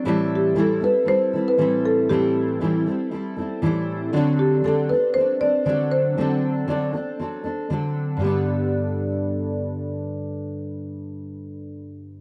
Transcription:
X:1
M:4/4
L:1/16
Q:"Swing 16ths" 1/4=118
K:G
V:1 name="Marimba"
z2 G2 A2 B2 c3 B3 A2 | G8 z8 | z2 G2 A2 B2 c2 d2 d2 c2- | c12 z4 |
G16- | G16 |]
V:2 name="Steel-string acoustic guitar"
[A,,E,G,CEA]4 [A,,E,G,CEA]2 [G,CEA]2 [G,CEA]2 [G,CEA]2 [A,,E,G,CEA]4 | [A,,E,G,CEA]4 [A,,E,G,CEA]2 [G,CEA]2 [G,CEA]2 [G,CEA]2 [A,,E,G,CEA]4 | [D,F,CDA]4 [D,F,CDA]2 [CDA]2 [F,CDA]2 [CDA]2 [D,F,CDA]4 | [D,F,CDA]4 [D,F,CDA]2 [CDA]2 [F,CDA]2 [CDA]2 [D,F,CDA]4 |
[G,,D,G,B,DA]16- | [G,,D,G,B,DA]16 |]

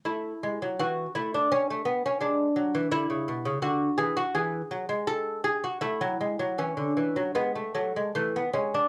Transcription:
X:1
M:3/4
L:1/16
Q:1/4=83
K:A
V:1 name="Lute"
E4 F2 E D C A, B, C | D4 E4 F2 G F | G4 A2 G F E4 | C4 B, A, F, G, A, B, C D |]
V:2 name="Lute" clef=bass
A,2 G, F, E,2 A,6 | G,2 F, E, D, C, B,, C, D,2 E,2 | E,2 F, G,4- G, A, F, G, F, | E, D, E, F, G,2 A,2 E,2 G,2 |]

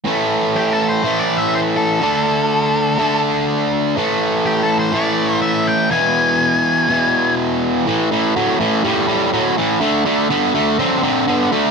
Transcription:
X:1
M:4/4
L:1/8
Q:1/4=123
K:Am
V:1 name="Lead electric guitar"
z2 (3G A c- (3c d e c A- | A4- A z3 | z2 (3G A c d2 e g | ^g6 z2 |
z8 | z8 |]
V:2 name="Distorted electric guitar" clef=bass
[A,,E,A,]4 [A,,E,A,]4 | [D,A,D]4 [D,A,D]4 | [A,,E,A,]4 [A,,E,A,]4 | [E,,B,,E,]4 [E,,B,,E,]4 |
[A,,E,] [A,,E,] [A,,^F,] [A,,E,] [A,,G,] [A,,G,] [A,,F,] [A,,E,] | [D,A,] [D,A,] [D,B,] [D,A,] [D,C] [D,C] [D,B,] [D,A,] |]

